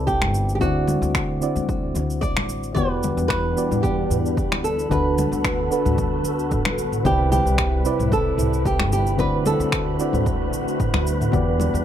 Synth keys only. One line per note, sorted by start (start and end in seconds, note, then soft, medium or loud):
0.00 0.64 C3 medium
0.00 0.61 C4 medium
0.00 0.61 E4 medium
0.00 0.65 B4 medium
0.00 0.63 D5 medium
0.59 1.38 D3 medium
0.59 1.39 C4 medium
0.59 1.39 E4 medium
0.59 1.40 F#4 medium
0.59 1.40 D5 medium
1.41 1.50 D3 medium
1.41 1.50 C4 medium
1.41 1.51 E4 medium
1.41 1.51 F#4 medium
1.41 1.51 D5 medium
2.75 3.53 E3 medium
2.75 3.53 B3 medium
2.75 3.54 F#4 medium
2.75 3.54 G4 medium
2.79 3.55 D5 medium
3.56 3.65 E3 medium
3.56 3.65 B3 medium
3.56 3.65 F#4 medium
3.56 3.66 G4 medium
3.56 3.66 D5 medium
4.89 5.67 D3 medium
4.89 5.68 D4 medium
4.89 5.68 F#4 medium
4.89 5.69 A4 medium
4.93 5.69 B4 medium
5.71 5.79 D3 medium
5.71 5.79 D4 medium
5.71 5.80 F#4 medium
5.71 5.80 A4 medium
5.71 5.80 B4 medium
7.03 7.81 C3 medium
7.03 7.82 C4 medium
7.03 7.82 E4 medium
7.03 7.83 B4 medium
7.03 7.83 D5 medium
7.85 7.93 C3 medium
7.85 7.94 C4 medium
7.85 7.94 E4 medium
7.85 7.94 B4 medium
7.85 7.94 D5 medium
9.17 9.96 D3 medium
9.17 9.96 C4 medium
9.17 9.97 E4 medium
9.17 9.97 F#4 medium
9.17 9.98 D5 medium
9.99 10.07 D3 medium
9.99 10.08 C4 medium
9.99 10.08 E4 medium
9.99 10.08 F#4 medium
9.99 10.09 D5 medium
11.31 11.85 E3 medium
11.31 11.85 B3 medium
11.31 11.85 F#4 medium
11.31 11.85 G4 medium
11.35 11.85 D5 medium